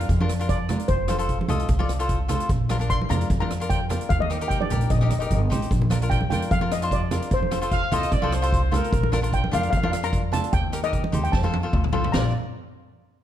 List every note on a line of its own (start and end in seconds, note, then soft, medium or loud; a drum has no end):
0.00 0.51 F5 medium
0.00 closed hi-hat medium
0.09 0.74 F2 medium
0.09 kick loud
0.09 closed hi-hat medium
0.20 0.32 D4 medium
0.20 0.32 F4 medium
0.20 0.32 A#4 medium
0.20 high conga medium
0.29 cross-stick medium
0.29 closed hi-hat medium
0.39 0.57 D4 medium
0.39 0.58 F4 medium
0.39 0.58 A#4 medium
0.39 closed hi-hat medium
0.49 0.86 D5 medium
0.49 kick medium
0.49 closed hi-hat medium
0.69 0.89 D4 medium
0.69 0.89 F4 medium
0.69 0.90 A#4 medium
0.69 cross-stick medium
0.69 closed hi-hat medium
0.69 low conga medium
0.80 closed hi-hat medium
0.88 1.38 F1 medium
0.88 1.45 C5 medium
0.88 kick loud
0.88 closed hi-hat medium
1.08 1.15 F4 medium
1.08 1.16 A4 medium
1.08 1.16 C5 medium
1.08 cross-stick medium
1.08 closed hi-hat medium
1.08 high conga medium
1.18 1.37 F4 medium
1.18 1.37 A4 medium
1.18 1.38 C5 medium
1.18 closed hi-hat medium
1.29 kick medium
1.29 closed hi-hat medium
1.41 high conga medium
1.48 1.65 C2 loud
1.48 1.67 F4 medium
1.48 1.67 A4 medium
1.48 1.68 D#5 loud
1.48 closed hi-hat medium
1.48 low conga medium
1.59 closed hi-hat medium
1.68 2.34 C2 medium
1.68 kick loud
1.68 closed hi-hat medium
1.79 1.91 F4 medium
1.79 1.91 A4 medium
1.79 1.92 D5 loud
1.79 high conga medium
1.89 cross-stick medium
1.89 closed hi-hat medium
1.99 2.18 F4 medium
1.99 2.18 A4 medium
1.99 2.18 C5 medium
1.99 closed hi-hat medium
2.09 kick medium
2.09 closed hi-hat medium
2.28 2.49 F4 medium
2.28 2.49 A4 medium
2.28 2.50 C5 medium
2.28 cross-stick medium
2.28 closed hi-hat loud
2.28 low conga medium
2.40 closed hi-hat medium
2.49 2.98 A#1 medium
2.49 kick loud
2.49 closed hi-hat medium
2.69 2.76 D4 medium
2.69 2.76 F4 medium
2.69 2.77 A#4 loud
2.69 cross-stick medium
2.69 closed hi-hat medium
2.69 high conga medium
2.79 2.98 D4 medium
2.79 2.98 F4 medium
2.79 2.98 A#4 medium
2.79 closed hi-hat medium
2.90 3.10 C6 loud
2.90 kick medium
2.90 closed hi-hat medium
3.01 high conga medium
3.09 3.26 F2 loud
3.09 3.28 D4 medium
3.09 3.28 F4 medium
3.09 3.28 A#4 medium
3.09 3.39 A#5 loud
3.09 closed hi-hat loud
3.09 low conga medium
3.21 closed hi-hat medium
3.30 3.95 F2 loud
3.30 kick loud
3.30 closed hi-hat medium
3.40 3.52 D4 medium
3.40 3.52 F4 medium
3.40 3.52 A#4 medium
3.40 3.68 A#5 loud
3.40 high conga medium
3.50 cross-stick medium
3.50 closed hi-hat medium
3.60 3.78 D4 medium
3.60 3.79 F4 medium
3.60 3.79 A#4 medium
3.60 closed hi-hat medium
3.70 4.07 G5 loud
3.70 kick loud
3.70 closed hi-hat medium
3.89 4.10 D4 medium
3.89 4.10 F4 medium
3.89 4.11 A#4 medium
3.89 cross-stick medium
3.89 closed hi-hat medium
3.89 low conga medium
4.01 closed hi-hat medium
4.09 4.59 D#2 medium
4.09 4.20 F5 loud
4.09 kick loud
4.09 closed hi-hat medium
4.20 4.48 D#5 medium
4.20 high conga medium
4.30 4.36 D#4 medium
4.30 4.37 G4 medium
4.30 4.37 A#4 medium
4.30 cross-stick medium
4.30 closed hi-hat medium
4.41 4.59 D#4 medium
4.41 4.59 G4 medium
4.41 4.59 A#4 medium
4.41 closed hi-hat medium
4.48 4.60 G5 loud
4.48 kick medium
4.48 closed hi-hat medium
4.61 4.91 D5 medium
4.61 high conga medium
4.70 4.87 A#1 loud
4.70 4.89 D#4 medium
4.70 4.89 G4 medium
4.70 4.89 A#4 medium
4.70 closed hi-hat medium
4.70 low conga medium
4.81 closed hi-hat medium
4.90 5.07 A#1 loud
4.90 4.97 D#5 medium
4.90 kick loud
4.90 closed hi-hat medium
4.90 low conga medium
4.99 5.13 D#4 medium
4.99 5.13 G4 medium
4.99 5.05 D#5 medium
4.99 cross-stick medium
5.03 5.13 A#4 medium
5.03 5.11 D#5 medium
5.10 5.28 F1 medium
5.10 5.18 D#5 medium
5.10 cross-stick medium
5.10 closed hi-hat medium
5.19 5.39 D#4 medium
5.19 5.39 G4 medium
5.19 5.39 A#4 medium
5.19 5.26 D#5 medium
5.19 closed hi-hat medium
5.27 5.49 G1 medium
5.27 5.34 D#5 medium
5.27 kick loud
5.27 closed hi-hat medium
5.31 5.42 D#5 medium
5.31 high conga medium
5.50 5.69 A1 medium
5.50 5.70 D#4 medium
5.50 5.71 G4 medium
5.50 5.71 C5 medium
5.50 cross-stick medium
5.50 closed hi-hat medium
5.50 low conga medium
5.62 closed hi-hat medium
5.71 6.20 A#1 medium
5.71 kick loud
5.71 closed hi-hat medium
5.82 high conga medium
5.90 5.97 D4 medium
5.90 5.97 F4 medium
5.90 5.98 A#4 loud
5.90 cross-stick medium
5.90 closed hi-hat loud
5.90 high conga medium
6.02 6.20 D4 medium
6.02 6.20 F4 medium
6.02 6.20 A#4 medium
6.02 closed hi-hat medium
6.10 6.29 G5 loud
6.10 kick medium
6.10 closed hi-hat medium
6.21 high conga medium
6.30 6.47 F2 loud
6.30 6.49 D4 medium
6.30 6.50 F4 medium
6.30 6.50 A#4 medium
6.30 6.39 G5 medium
6.30 closed hi-hat medium
6.30 low conga medium
6.42 closed hi-hat medium
6.51 7.16 F2 loud
6.51 6.72 F5 loud
6.51 kick loud
6.51 closed hi-hat medium
6.61 6.73 D4 medium
6.61 6.73 F4 medium
6.61 6.73 A#4 medium
6.61 high conga medium
6.71 6.92 D#5 medium
6.71 cross-stick loud
6.71 closed hi-hat medium
6.82 7.00 D4 medium
6.82 7.00 F4 medium
6.82 7.01 C5 medium
6.82 closed hi-hat medium
6.91 7.33 D5 medium
6.91 kick medium
6.91 closed hi-hat medium
7.11 7.31 D4 medium
7.11 7.32 F4 medium
7.11 7.32 A#4 medium
7.11 cross-stick medium
7.11 closed hi-hat medium
7.11 low conga medium
7.22 closed hi-hat medium
7.31 7.80 F1 medium
7.31 7.89 C5 medium
7.31 kick loud
7.31 closed hi-hat medium
7.42 high conga medium
7.51 7.58 F4 medium
7.51 7.58 A4 medium
7.51 7.58 C5 medium
7.51 cross-stick medium
7.51 closed hi-hat medium
7.51 high conga medium
7.61 7.80 F4 medium
7.61 7.80 A4 medium
7.61 7.81 C5 medium
7.61 closed hi-hat medium
7.71 7.91 F5 loud
7.71 kick loud
7.71 closed hi-hat medium
7.92 8.08 C2 loud
7.92 8.10 F4 loud
7.92 8.10 A4 medium
7.92 8.11 C5 loud
7.92 8.12 D#5 loud
7.92 closed hi-hat medium
7.92 low conga medium
8.03 closed hi-hat medium
8.12 8.77 C2 loud
8.12 8.32 D5 medium
8.12 kick loud
8.12 closed hi-hat medium
8.22 8.34 F4 loud
8.22 8.34 A4 medium
8.22 8.35 C5 loud
8.22 high conga medium
8.32 8.72 C5 medium
8.32 cross-stick medium
8.32 closed hi-hat medium
8.42 8.60 F4 medium
8.42 8.61 A4 medium
8.42 8.61 C5 loud
8.42 closed hi-hat medium
8.53 kick medium
8.53 closed hi-hat medium
8.71 8.92 F4 medium
8.71 8.92 A4 medium
8.71 9.24 A#4 medium
8.71 8.92 C5 medium
8.71 cross-stick medium
8.71 closed hi-hat medium
8.71 low conga medium
8.84 closed hi-hat medium
8.93 9.41 A#1 medium
8.93 kick loud
8.93 closed hi-hat medium
9.03 high conga medium
9.12 9.19 D4 medium
9.12 9.19 F4 medium
9.12 9.19 A#4 loud
9.12 cross-stick medium
9.12 closed hi-hat medium
9.12 high conga medium
9.22 9.41 D4 medium
9.22 9.41 F4 medium
9.22 9.41 A#4 medium
9.22 closed hi-hat medium
9.33 9.54 G5 loud
9.33 kick medium
9.33 closed hi-hat medium
9.44 high conga medium
9.51 9.69 F2 loud
9.51 9.70 D4 medium
9.51 9.71 F4 medium
9.51 9.71 A#4 medium
9.51 9.61 F5 medium
9.51 closed hi-hat medium
9.51 low conga medium
9.62 9.68 F5 medium
9.62 closed hi-hat medium
9.70 10.38 F2 loud
9.70 9.76 F5 medium
9.70 kick loud
9.70 closed hi-hat medium
9.77 9.84 F5 medium
9.83 9.95 D4 medium
9.83 9.95 F4 medium
9.83 9.95 A#4 medium
9.83 9.91 F5 medium
9.83 high conga medium
9.92 9.98 F5 medium
9.92 cross-stick medium
9.92 closed hi-hat medium
10.03 10.21 D4 medium
10.03 10.21 F4 medium
10.03 10.22 A#4 medium
10.03 10.34 A#5 loud
10.03 closed hi-hat medium
10.13 kick medium
10.13 closed hi-hat medium
10.32 10.52 D4 medium
10.32 10.53 F4 medium
10.32 10.53 A4 medium
10.32 10.53 A5 loud
10.32 cross-stick medium
10.32 closed hi-hat loud
10.32 low conga medium
10.44 closed hi-hat medium
10.53 11.02 D#2 medium
10.53 10.85 G5 loud
10.53 kick loud
10.53 closed hi-hat medium
10.72 10.79 D#4 medium
10.72 10.79 G4 medium
10.72 10.80 A#4 medium
10.72 cross-stick medium
10.72 closed hi-hat medium
10.83 11.02 D#4 medium
10.83 11.02 G4 medium
10.83 11.02 A#4 medium
10.83 11.21 D#5 loud
10.83 closed hi-hat medium
10.93 kick medium
10.93 closed hi-hat medium
11.04 high conga medium
11.12 11.30 D#2 loud
11.12 11.31 D#4 medium
11.12 11.31 G4 medium
11.12 11.32 C5 medium
11.12 closed hi-hat medium
11.12 low conga medium
11.24 11.28 G5 medium
11.24 closed hi-hat medium
11.32 11.66 F2 medium
11.32 11.89 A5 medium
11.32 kick loud
11.32 snare medium
11.43 11.55 F4 medium
11.43 11.56 A4 medium
11.43 11.56 C5 medium
11.43 high conga medium
11.53 high tom medium
11.63 11.82 F4 medium
11.63 11.82 A4 medium
11.63 11.82 C5 medium
11.73 11.91 D2 medium
11.73 kick loud
11.73 mid tom loud
11.84 mid tom medium
11.92 12.11 C2 medium
11.92 12.12 F4 medium
11.92 12.13 A4 medium
11.92 12.14 C5 medium
11.92 floor tom loud
12.04 floor tom medium
12.12 12.32 A#1 medium
12.12 12.32 F4 medium
12.12 12.32 A#4 medium
12.12 12.32 D5 medium
12.12 12.33 D5 medium
12.12 12.32 A#5 loud
12.12 snare loud
12.12 crash medium
12.12 high conga medium